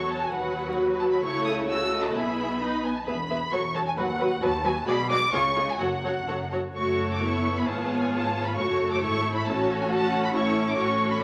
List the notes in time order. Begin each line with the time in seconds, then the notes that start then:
Already playing: E1 E2 F#3 F#4 A4 C#5 C#6
0.11 A5
0.23 G#5
0.34 D#2 F#3 F#4 B4 F#5
1.01 A5
1.12 B5
1.23 C#2 C#3 A3 E4 A4 C#5 C#6
1.46 D#6
1.68 A3 F#4 A4 C#5 E6
1.91 D#5
2.03 A5
2.13 B1 B2 B3 E4 G#4 E5 B5
2.60 D#4 B4 D#5
2.84 B3 G#5
2.97 A5
3.06 E1 E2 B3 G#4 B4 E5 B5
3.30 B3 G#4 B4 E5
3.52 E1 E2 F#3 F#4 A4 C#5 C#6
3.74 F#3 F#4 A4 C#5 A5
3.87 G#5
3.97 D#2 F#3 F#4 B4 F#5
4.19 F#3 F#4 B4
4.41 D#2 F#3 F#4 B4 A5
4.64 F#3 F#4 B4 G#5
4.76 A5
4.86 B1 B2 G#3 F#4 G#4 D5 B5
5.10 G#3 F#4 G#4 D5 D6
5.32 C#2 C#3 G#3 F4 G#4 C#5 C#6
5.55 G#3 F4 G#4 C#5
5.69 G#5
5.79 F#1 F#2 F#3 F#4 A4 C#5 F#5
6.04 F#3 F#4 A4 C#5
6.27 F#1 F#2 F#3 F#4 A4 C#5
6.51 F#3 F#4 A4 C#5
6.75 F#1 F#2 A3 F#4 A4 C#5 C#6
7.11 D6
7.21 B3 E4 C#6
7.56 B5
7.65 G#1 G#2 F4 G#4 C#5 A5
8.01 G#5
8.12 A5
8.44 B5
8.56 F#1 F#2 A3 F#4 A4 C#5 C#6
8.91 D6
9.02 G#1 G#2 E4 C#6
9.35 B5
9.45 A1 A2 C#4 F#4 A4 C#5 A5
9.81 G#5
9.89 C#4 F#5 A5
10.24 B5
10.33 A1 A2 C#4 E4 A4 C#5 C#6
10.68 D6
10.77 A1 A2 F#4 A4 C#5 C#6
11.13 B5